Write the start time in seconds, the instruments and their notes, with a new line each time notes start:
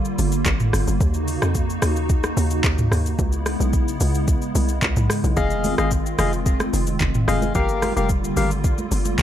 Already playing: analog synth pad D3 G3 A#3 F4
0.05 shaker
0.19 log drum bass G1, open hi-hat, shaker
0.32 shaker
0.45 log drum bass G#1, kick, clap, shaker
0.60 mid tom, shaker
0.73 log drum bass G1, cross-stick, open hi-hat, shaker
0.88 log drum bass G1, shaker
1.01 log drum bass D#2, analog synth pad C#3 D#4 F#4, kick, shaker
1.14 shaker
1.28 open hi-hat, shaker
1.42 log drum bass F2, cross-stick, shaker
1.55 kick, shaker
1.70 shaker
1.82 log drum bass D#2, cross-stick, open hi-hat, shaker
1.96 shaker
2.09 kick, shaker
2.24 cross-stick, shaker
2.37 log drum bass D#2, open hi-hat, shaker
2.50 shaker
2.64 log drum bass D#2, kick, clap, shaker
2.78 mid tom, shaker
2.91 log drum bass D#2, cross-stick, open hi-hat, shaker
3.06 shaker
3.18 log drum bass C#2, analog synth pad C#3 G#3 B3 E4, kick, shaker
3.32 shaker
3.46 cross-stick, open hi-hat, shaker
3.60 log drum bass B1, shaker
3.73 kick, shaker
3.88 shaker
4.00 log drum bass C#2, open hi-hat, shaker
4.15 shaker
4.28 kick, shaker
4.42 shaker
4.55 log drum bass C2, open hi-hat, shaker
4.69 shaker
4.82 log drum bass C#2, kick, clap, shaker
4.96 log drum bass B1, mid tom, shaker
5.10 cross-stick, open hi-hat, shaker
5.24 log drum bass B1, shaker
5.37 log drum bass F1, analog synth pad D#3 C4 F4, synth stab G#4 D#5 F5, kick, low conga, shaker
5.50 shaker
5.64 open hi-hat, high conga, shaker
5.78 log drum bass G#1, synth stab G#4 D#5 F5, cross-stick, shaker
5.91 kick, shaker
6.06 shaker
6.19 log drum bass F1, synth stab G#4 D#5 F5, cross-stick, open hi-hat, high conga, low conga, shaker
6.33 shaker
6.46 kick, shaker
6.60 cross-stick, high conga, shaker
6.73 log drum bass F1, open hi-hat, shaker
6.87 high conga, shaker
7.00 log drum bass F1, kick, clap, high conga, low conga, shaker
7.15 mid tom, shaker
7.28 log drum bass F1, synth stab G#4 D#5 F5, cross-stick, open hi-hat, shaker
7.42 high conga, shaker
7.55 log drum bass G1, analog synth pad D3 G3 A#3 F4, synth stab G4 A#4 F5, kick, low conga, shaker
7.69 shaker
7.82 cross-stick, open hi-hat, high conga, shaker
7.96 log drum bass F1, synth stab G4 A#4 F5, shaker
8.09 kick, shaker
8.24 shaker
8.37 log drum bass G#1, synth stab G4 A#4 F5, open hi-hat, high conga, low conga, shaker
8.51 shaker
8.64 kick, shaker
8.78 high conga, shaker
8.91 log drum bass G1, open hi-hat, shaker
9.05 high conga, shaker
9.19 log drum bass G#1, kick, high conga, low conga, shaker